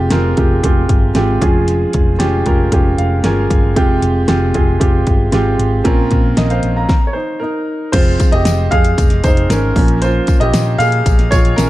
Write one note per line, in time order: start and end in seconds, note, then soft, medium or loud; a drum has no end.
0.00 0.34 C3 medium
0.00 0.11 G#3 medium
0.00 0.11 C4 medium
0.00 0.12 F4 medium
0.00 0.38 G4 loud
0.10 0.33 F1 medium
0.10 0.34 G#3 medium
0.10 0.34 C4 medium
0.10 0.35 F4 medium
0.10 0.35 A#4 medium
0.10 snare loud
0.10 closed hi-hat medium
0.37 0.59 F1 medium
0.37 0.60 G#3 medium
0.37 0.61 C4 medium
0.37 0.61 F4 medium
0.37 0.61 G4 medium
0.37 kick medium
0.37 closed hi-hat medium
0.63 0.85 F1 medium
0.63 1.10 G#3 medium
0.63 1.10 C4 medium
0.63 1.10 F4 medium
0.63 1.10 G4 medium
0.63 kick medium
0.63 closed hi-hat medium
0.89 1.11 G1 medium
0.89 kick medium
0.89 closed hi-hat medium
1.15 1.37 G#1 medium
1.15 1.40 G#3 medium
1.15 1.42 C4 medium
1.15 1.40 F4 medium
1.15 1.42 G4 medium
1.15 snare medium
1.15 closed hi-hat medium
1.42 1.85 F1 medium
1.42 2.16 F3 medium
1.42 2.10 G#3 medium
1.42 2.10 C#4 medium
1.42 2.10 F4 medium
1.42 2.10 G#4 medium
1.42 kick medium
1.42 closed hi-hat medium
1.68 closed hi-hat medium
1.93 2.16 F1 medium
1.93 kick medium
1.93 closed hi-hat medium
2.19 2.42 F1 medium
2.19 2.42 G#3 medium
2.19 2.43 C#4 medium
2.19 2.42 F4 medium
2.19 2.43 G4 medium
2.19 snare medium
2.19 closed hi-hat medium
2.46 2.68 F1 medium
2.46 2.69 G#3 medium
2.46 2.69 C#4 medium
2.46 2.69 F4 medium
2.46 2.69 A#4 medium
2.46 kick medium
2.46 closed hi-hat medium
2.72 2.94 F1 medium
2.72 3.18 G#3 medium
2.72 3.18 C#4 medium
2.72 3.18 F4 medium
2.72 3.19 G4 medium
2.72 kick medium
2.72 closed hi-hat medium
2.98 3.20 F1 medium
2.98 3.23 F5 medium
2.98 closed hi-hat medium
3.24 3.46 G1 medium
3.24 3.70 G#3 medium
3.24 3.70 C#4 medium
3.24 3.70 F4 medium
3.24 3.70 A#4 medium
3.24 3.73 G#5 medium
3.24 snare medium
3.24 closed hi-hat medium
3.50 3.77 G1 medium
3.50 kick medium
3.50 closed hi-hat medium
3.76 3.98 F1 medium
3.76 4.51 C3 medium
3.76 4.22 G#3 medium
3.76 4.22 C4 medium
3.76 4.22 F4 medium
3.76 4.23 G4 loud
3.76 kick loud
3.76 closed hi-hat medium
4.02 4.24 F1 medium
4.02 closed hi-hat medium
4.28 4.51 F1 medium
4.28 4.51 G#3 medium
4.28 4.51 C4 medium
4.28 4.51 F4 medium
4.28 4.51 G4 medium
4.28 snare loud
4.28 closed hi-hat medium
4.54 4.76 F1 medium
4.54 4.78 G#3 medium
4.54 4.78 C4 medium
4.54 4.78 F4 medium
4.54 4.78 G#4 medium
4.54 kick medium
4.54 closed hi-hat medium
4.80 5.03 F1 medium
4.80 5.26 G#3 medium
4.80 5.26 C4 medium
4.80 5.26 F4 medium
4.80 5.26 G4 medium
4.80 kick medium
4.80 closed hi-hat medium
5.07 5.29 G1 medium
5.07 kick medium
5.07 closed hi-hat medium
5.32 5.55 G#1 medium
5.32 5.78 G#3 medium
5.32 5.79 C4 medium
5.32 5.79 F4 medium
5.32 5.79 G4 medium
5.32 snare medium
5.32 closed hi-hat medium
5.59 5.81 G#1 medium
5.59 closed hi-hat medium
5.84 6.07 A#1 medium
5.84 6.59 A#2 medium
5.84 6.59 F3 medium
5.84 6.30 C4 medium
5.84 6.31 C#4 medium
5.84 6.31 F4 medium
5.84 6.11 A#4 medium
5.84 kick loud
5.84 closed hi-hat medium
6.11 6.33 A#1 medium
6.11 kick medium
6.11 closed hi-hat medium
6.37 6.59 A#1 medium
6.37 6.50 A#4 soft
6.37 6.50 D#5 medium
6.37 snare loud
6.37 closed hi-hat medium
6.50 6.75 C5 medium
6.50 6.75 F5 medium
6.50 closed hi-hat soft
6.63 6.85 A#1 medium
6.63 closed hi-hat medium
6.76 7.01 F5 soft
6.76 7.01 A#5 medium
6.89 kick medium
6.89 snare medium
7.07 7.15 C#5 medium
7.13 7.40 D#4 soft
7.13 7.38 C5 medium
7.40 7.90 D#4 medium
7.40 7.94 A#4 medium
7.92 8.15 F1 medium
7.92 8.28 F3 medium
7.92 8.28 G#3 soft
7.92 8.29 C4 medium
7.92 8.30 F4 medium
7.92 8.33 C5 medium
7.92 kick loud
7.92 closed hi-hat medium
7.92 crash medium
8.20 kick medium
8.20 closed hi-hat medium
8.20 tambourine soft
8.32 8.43 F1 medium
8.32 8.70 G4 medium
8.32 8.73 D#5 medium
8.32 closed hi-hat soft
8.45 8.67 F1 medium
8.45 snare loud
8.45 closed hi-hat medium
8.45 tambourine medium
8.71 8.93 F2 medium
8.71 9.21 G#4 medium
8.71 9.20 F5 medium
8.71 kick medium
8.71 closed hi-hat medium
8.84 closed hi-hat soft
8.98 9.19 F1 loud
8.98 kick medium
8.98 closed hi-hat medium
8.98 tambourine soft
9.10 snare soft
9.10 closed hi-hat soft
9.24 9.45 F1 medium
9.24 9.49 D#4 medium
9.24 9.48 C5 medium
9.24 kick medium
9.24 closed hi-hat medium
9.24 tambourine soft
9.37 closed hi-hat soft
9.50 9.71 G#1 loud
9.50 9.77 C#4 medium
9.50 10.03 A#4 medium
9.50 snare loud
9.50 closed hi-hat medium
9.50 tambourine medium
9.76 10.18 A#1 medium
9.76 10.11 F3 medium
9.76 10.11 A#3 soft
9.76 10.12 C#4 medium
9.76 kick medium
9.76 open hi-hat medium
9.76 tambourine soft
9.88 closed hi-hat medium
10.02 10.39 F4 medium
10.02 10.42 C5 medium
10.02 closed hi-hat medium
10.02 tambourine soft
10.27 kick medium
10.27 closed hi-hat medium
10.27 tambourine soft
10.40 10.51 A#1 medium
10.40 10.78 G4 medium
10.40 10.81 D#5 medium
10.40 closed hi-hat soft
10.54 10.75 A#1 medium
10.54 snare loud
10.54 closed hi-hat medium
10.54 tambourine medium
10.78 11.01 A#2 loud
10.78 11.29 G#4 medium
10.78 11.27 F5 loud
10.78 closed hi-hat medium
10.78 tambourine soft
10.92 closed hi-hat soft
11.06 11.27 A#1 loud
11.06 kick medium
11.06 closed hi-hat loud
11.06 tambourine medium
11.19 snare soft
11.19 closed hi-hat soft
11.31 11.53 A#1 loud
11.31 11.57 F4 medium
11.31 11.58 C#5 medium
11.31 kick medium
11.31 closed hi-hat medium
11.31 tambourine medium
11.45 closed hi-hat soft
11.56 11.70 A#1 medium
11.56 11.70 C#4 medium
11.56 11.70 A#4 medium
11.56 snare loud
11.56 closed hi-hat medium
11.56 tambourine medium